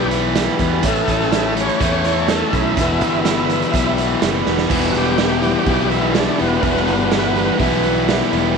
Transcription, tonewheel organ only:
0.88 1.54 A4 medium
1.60 1.83 C#5 loud
1.84 2.32 C#5 loud
2.30 2.54 A4 medium
2.54 3.95 E4 loud
4.92 4.95 F#4 medium
4.97 5.90 G4 loud
5.91 6.15 E4 medium
6.19 6.41 D4 medium
6.41 6.64 B3 medium
6.61 6.64 A#3 medium
6.61 7.58 B3 medium

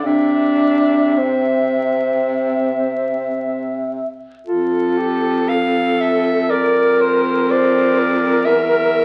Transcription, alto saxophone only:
0.05 1.16 E5 soft
1.19 4.09 E5 soft
4.46 5.00 F4 medium
4.98 5.48 G4 medium
5.49 6.51 A4 medium
6.49 7.53 A#4 medium
7.52 8.00 C5 medium
7.99 9.05 A#4 medium

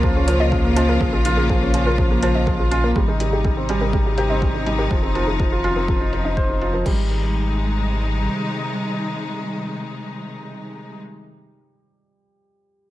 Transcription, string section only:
0.00 2.92 C#3 medium
0.00 2.92 F3 medium
0.00 2.92 A#3 medium
0.00 2.92 F4 medium
2.96 6.82 C3 medium
2.96 6.82 D#3 medium
2.96 4.89 G3 medium
2.96 6.82 D#4 medium
4.91 6.84 F3 medium
6.86 10.99 C3 medium
6.86 10.99 D#3 medium
6.86 10.99 G3 medium
6.86 10.99 G#3 medium
6.86 10.99 D#4 medium

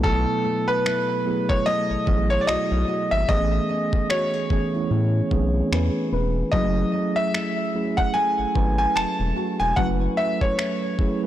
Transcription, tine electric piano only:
0.00 0.95 F#3 medium
0.00 0.95 A3 medium
0.00 0.95 B3 medium
0.00 0.95 E4 medium
0.00 0.95 A4 loud
0.00 3.31 A5 medium
1.26 1.79 F#3 medium
1.26 1.79 A3 medium
1.26 1.79 B3 medium
1.26 1.80 E4 medium
1.26 1.80 G#4 medium
2.07 2.85 F#3 medium
2.07 2.85 A3 medium
2.07 2.85 B3 medium
2.07 2.85 E4 medium
2.07 2.85 G#4 medium
3.28 4.06 E3 medium
3.28 4.06 A3 medium
3.28 4.07 B3 medium
3.28 4.07 C#4 medium
3.28 4.07 G#4 loud
4.50 4.65 E3 medium
4.50 4.65 A3 medium
4.50 4.66 B3 medium
4.50 4.66 C#4 medium
4.50 4.66 G#4 medium
4.74 5.12 E3 medium
4.74 5.12 A3 medium
4.74 5.12 B3 medium
4.74 5.12 C#4 medium
4.74 5.13 E4 medium
5.31 6.09 E3 medium
5.31 6.09 A3 medium
5.31 6.09 B3 medium
5.31 5.39 C4 medium
5.31 6.10 G#4 medium
5.39 6.13 C#4 medium
6.53 7.30 F#3 medium
6.53 6.61 G#3 medium
6.53 7.31 C#4 medium
6.53 7.31 E4 medium
6.53 7.31 G#4 loud
6.59 7.34 A3 medium
7.74 8.27 F#3 medium
7.74 8.28 A3 medium
7.74 8.28 C#4 medium
7.74 8.28 E4 medium
7.74 8.28 G#4 medium
8.55 9.33 F#3 medium
8.55 9.33 A3 medium
8.55 9.34 C#4 medium
8.55 9.34 E4 medium
8.55 9.34 B4 medium
9.77 10.55 F#3 medium
9.77 10.55 A3 medium
9.77 10.55 C#4 medium
9.77 10.55 E4 medium
9.77 10.56 B4 loud
10.99 11.14 F#3 medium
10.99 11.14 A3 medium
10.99 11.14 C#4 medium
10.99 11.14 E4 medium
10.99 11.15 G#4 medium
11.22 11.27 F#3 medium
11.22 11.27 A3 medium
11.22 11.27 C#4 medium
11.22 11.27 E4 medium

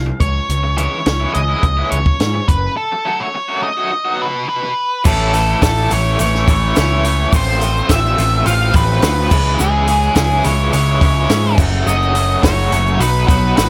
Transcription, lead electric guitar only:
0.00 0.27 F5 medium
0.20 0.77 C#5 medium
0.78 1.34 C#5 medium
1.34 1.91 D#5 medium
1.91 2.50 C#5 medium
2.48 2.77 B4 medium
2.77 3.21 A4 medium
3.20 3.63 C#5 medium
3.63 4.73 D#5 medium
4.22 4.48 B4 medium
4.49 5.02 B4 medium
5.06 5.62 A4 medium
5.63 5.92 A4 medium
5.92 6.20 C#5 loud
6.21 6.77 C#5 loud
6.79 7.30 C#5 medium
7.36 7.93 C5 medium
7.91 8.43 E5 loud
8.47 8.73 F5 loud
8.76 9.02 B4 medium
9.04 9.60 B4 medium
9.60 10.15 G#4 loud
10.16 10.46 G#4 medium
10.44 10.72 C#5 medium
10.73 11.54 C#5 medium
11.87 12.43 D#5 medium
12.44 13.02 C#5 loud
13.00 13.27 B4 medium
13.28 13.56 B4 medium
13.57 13.69 B4 medium

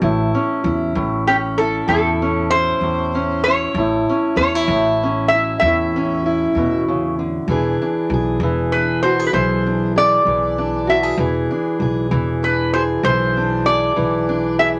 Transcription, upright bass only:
0.02 0.30 A1 loud
0.64 0.92 E2 loud
0.95 1.79 A1 loud
1.88 2.72 E2 medium
2.81 3.65 E2 medium
3.74 4.03 A1 loud
4.36 4.64 E2 medium
4.68 5.51 A1 loud
5.61 6.45 E2 loud
6.55 7.38 E2 medium
7.48 7.75 E1 medium
8.10 8.37 B1 medium
8.40 9.23 E1 medium
9.33 10.16 B1 loud
10.25 11.09 B1 medium
11.18 11.46 E1 loud
11.80 12.08 B1 medium
12.11 12.94 E1 medium
13.03 13.87 B1 loud
13.97 14.79 B1 medium

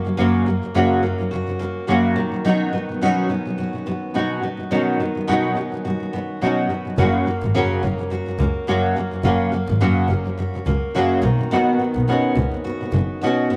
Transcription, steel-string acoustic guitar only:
0.00 0.16 A#3 medium
0.00 0.74 C#4 medium
0.00 1.31 F#4 medium
0.17 0.45 A#3 medium
0.46 1.02 A#3 soft
0.75 2.48 C#4 soft
1.03 1.58 A#3 medium
1.31 1.87 F#4 medium
1.59 2.22 A#3 soft
1.87 3.58 F#4 medium
2.16 2.43 D#3 medium
2.45 4.71 D#3 medium
2.73 3.29 B3 soft
3.01 5.28 C#4 medium
3.30 3.86 B3 soft
3.58 4.15 F#4 medium
3.87 4.42 B3 medium
4.15 5.84 F#4 medium
4.43 4.99 B3 medium
4.72 6.98 D#3 medium
5.00 5.55 B3 medium
5.29 7.54 C#4 medium
5.57 6.12 B3 soft
5.85 6.41 F#4 medium
6.13 6.69 B3 medium
6.41 8.11 F#4 soft
6.70 6.98 B3 soft
6.98 7.26 A#3 medium
7.27 7.82 A#3 soft
7.55 9.81 C#4 medium
7.83 8.38 A#3 soft
8.11 8.67 F#4 medium
8.39 8.95 A#3 medium
8.68 10.38 F#4 medium
8.96 9.24 A#3 medium
9.25 9.52 A#3 medium
9.53 10.08 A#3 soft
9.82 11.54 C#4 medium
10.10 10.65 A#3 soft
10.38 10.94 F#4 medium
10.66 11.29 A#3 medium
10.95 12.64 F#4 medium
11.23 11.51 D#3 medium
11.51 13.57 D#3 medium
11.79 12.35 B3 soft
12.08 13.57 C#4 medium
12.36 12.92 B3 medium
12.65 13.20 F#4 medium
12.93 13.49 B3 medium
13.21 13.57 F#4 medium
13.50 13.57 B3 medium

